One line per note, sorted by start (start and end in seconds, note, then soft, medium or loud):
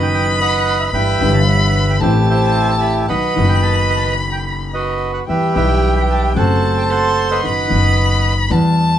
0.00 0.88 F#1 loud
0.00 0.88 F#2 loud
0.00 0.86 D#3 medium
0.00 0.87 F#3 loud
0.00 0.88 B3 medium
0.00 0.89 F#4 medium
0.00 0.40 B4 medium
0.00 0.39 D#5 medium
0.00 0.08 G5 medium
0.00 0.89 B5 loud
0.15 0.26 G5 loud
0.41 0.91 B4 medium
0.41 0.90 D#5 medium
0.41 0.78 F#5 loud
0.80 0.86 E5 medium
0.91 1.16 G1 medium
0.91 1.16 G2 medium
0.91 1.16 E3 medium
0.91 1.16 G3 soft
0.91 1.16 B3 soft
0.91 1.16 G4 medium
0.91 1.46 B4 medium
0.91 1.98 E5 medium
0.91 1.35 G5 loud
0.91 2.02 B5 loud
1.19 1.98 G1 loud
1.19 1.98 G1 medium
1.19 1.98 G2 medium
1.19 1.97 E3 medium
1.19 1.97 G3 medium
1.19 1.98 B3 medium
1.19 1.99 G4 loud
1.33 1.40 A5 medium
1.48 1.98 B4 medium
1.48 1.86 F#5 loud
1.90 1.96 G5 loud
1.99 3.04 A1 medium
1.99 3.04 A2 medium
1.99 3.03 E3 medium
1.99 3.03 A3 medium
1.99 3.04 C4 medium
1.99 2.28 E4 medium
1.99 2.29 G4 medium
1.99 2.15 C5 medium
1.99 3.11 A5 loud
2.03 3.05 G4 medium
2.30 3.06 E4 medium
2.30 3.06 G4 medium
2.30 2.71 C5 loud
2.69 2.82 E5 loud
2.81 2.93 B5 loud
3.09 3.32 B1 medium
3.09 3.33 B1 medium
3.09 3.32 B2 medium
3.09 3.32 D#3 medium
3.09 3.32 F#3 soft
3.09 3.32 B3 soft
3.09 3.32 F#4 medium
3.09 4.14 B4 medium
3.09 4.14 D#5 medium
3.09 3.51 F#5 loud
3.09 5.00 B5 loud
3.35 5.18 F#1 loud
3.35 5.18 F#2 medium
3.35 5.17 D#3 medium
3.35 5.17 F#3 medium
3.35 5.18 B3 medium
3.35 5.19 F#4 medium
3.49 3.62 G5 loud
3.63 3.75 A5 loud
3.90 3.97 B5 loud
3.96 4.04 A5 medium
4.06 4.30 B5 loud
4.32 4.38 G5 medium
4.47 4.59 B5 loud
4.74 5.25 F#4 medium
4.74 5.24 B4 medium
4.74 5.12 D#5 medium
5.14 5.20 F#5 medium
5.27 5.50 E2 medium
5.27 5.51 E2 medium
5.27 5.50 E3 medium
5.27 5.51 G3 soft
5.27 5.50 B3 soft
5.27 5.50 G4 medium
5.27 6.33 G4 medium
5.27 5.55 B4 medium
5.27 5.54 E5 medium
5.27 6.39 G5 medium
5.54 6.32 B1 medium
5.54 6.32 B1 loud
5.54 6.32 B2 medium
5.54 6.31 E3 medium
5.54 6.32 G3 medium
5.54 6.32 B3 medium
5.54 6.33 G4 medium
5.54 6.33 B4 medium
5.54 6.33 E5 medium
5.54 5.93 G5 loud
5.97 6.03 B5 medium
6.10 6.22 A5 medium
6.34 7.39 F#1 loud
6.34 7.38 F#2 medium
6.34 7.37 C3 medium
6.34 7.38 F#3 medium
6.34 7.39 A3 medium
6.34 7.41 A4 medium
6.34 6.89 C5 medium
6.34 6.74 F#5 loud
6.34 6.92 A5 loud
6.38 7.40 F#4 medium
6.78 6.83 G5 medium
6.90 7.41 C5 medium
6.90 7.29 F#5 medium
6.90 7.28 A5 loud
6.90 7.47 C6 loud
7.31 8.34 B4 medium
7.31 8.34 D#5 medium
7.31 8.34 F#5 medium
7.43 7.67 F#1 medium
7.43 7.66 F#2 medium
7.43 7.66 D#3 medium
7.43 7.66 F#3 medium
7.43 7.66 B3 medium
7.43 7.66 F#4 medium
7.43 8.53 B5 loud
7.67 8.46 F#2 medium
7.67 8.45 D#3 medium
7.67 8.46 F#3 medium
7.67 8.47 B3 medium
7.72 8.47 F#1 medium
7.72 8.47 F#4 medium
8.49 8.99 E2 loud
8.49 8.99 E3 medium
8.49 8.99 G3 medium
8.49 8.99 B3 medium
8.49 8.99 F#5 medium
8.49 8.99 A5 loud